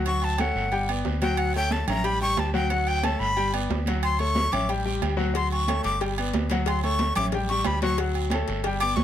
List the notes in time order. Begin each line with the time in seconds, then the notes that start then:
Already playing: D2
0.06 F#3 F#4 F#5 C#6, high conga, low agogo, long guiro
0.22 A5, high conga, low agogo
0.38 A3 A4 C#5 F#5, high conga, low timbale, low agogo, short guiro
0.55 G1, high conga, short guiro
0.72 G3 G4 G5, high conga, low agogo, long guiro
0.88 B3 B4 D5, high conga, low agogo
1.05 D2, high conga, low timbale, short guiro
1.22 F#3 F#4 F#5 G5, high conga, low agogo, short guiro
1.37 F#5, high conga, low agogo, long guiro
1.54 A3 A4 C#5 G5, high conga, low agogo
1.71 A5, high conga, low timbale, short guiro
1.87 A1 C#4 C#5 E5 A#5, high conga, low conga, low agogo, short guiro
2.04 G3 G4 G5 B5, high conga, low agogo, long guiro
2.21 G3 G4 G5 C#6, high conga
2.37 D2 A5, high conga, low timbale, low agogo, short guiro
2.53 F#3 F#4 F#5 G5, high conga, short guiro
2.70 F#3 F#4 F#5, high conga, low agogo, long guiro
2.87 G5, high conga, low agogo
3.03 A3 A4 C#5 A5, high conga, low timbale, low agogo, short guiro
3.19 G1 B5, high conga, short guiro
3.37 G3 G4 G5, high conga, low agogo, long guiro
3.53 B3 B4 D5, high conga, low agogo
3.69 D2, high conga, low timbale, short guiro
3.86 F#3 F#4 F#5, high conga, low agogo, short guiro
4.03 C6, high conga, low agogo, long guiro
4.19 A3 A4 C#5 C#6, high conga, low agogo
4.35 high conga, low timbale, short guiro
4.52 A1 C#4 C#5 E5 D6, high conga, low conga, low agogo, short guiro
4.69 G3 G4 G5, low agogo, long guiro
4.85 G3 G4 G5, high conga
5.01 D2, high conga, low timbale, low agogo, short guiro
5.17 F#3 F#4 F#5, high conga, short guiro
5.34 F#3 F#4 F#5 C6, cowbell, high conga, low agogo, long guiro
5.51 C#6, high conga, low agogo
5.68 A3 A4 C#5, cowbell, high conga, low timbale, low agogo, short guiro
5.84 G1 D6, cowbell, high conga, short guiro
6.01 G3 G4 G5, cowbell, high conga, low agogo, long guiro
6.18 B3 B4 D5, high conga, low agogo
6.33 D2, cowbell, high conga, low timbale, short guiro
6.50 F#3 F#4 F#5, cowbell, high conga, low agogo, short guiro
6.66 C6, cowbell, high conga, low agogo, long guiro
6.83 A3 A4 C#5 C#6, high conga, low agogo
6.99 cowbell, high conga, low timbale, short guiro
7.15 A1 C#4 C#5 E5 D6, cowbell, high conga, low conga, low agogo, short guiro
7.32 G3 G4 G5, cowbell, high conga, low conga, low agogo, long guiro
7.49 G3 G4 G5 C#6, cowbell
7.64 D2 B5, cowbell, high conga, low timbale, low agogo, short guiro
7.81 F#3 F#4 F#5 C#6, cowbell, high conga, short guiro
7.97 F#3 F#4 F#5, cowbell, low agogo, long guiro
8.14 high conga, low agogo
8.30 A3 C#5, cowbell, high conga, low timbale, low agogo, short guiro
8.34 A4
8.47 G1, cowbell, high conga, short guiro
8.64 G3 G4 G5, cowbell, high conga, low agogo, long guiro
8.80 B3 B4 D5 D6, high conga, low agogo
8.96 D2 C#6, cowbell, high conga, low timbale, short guiro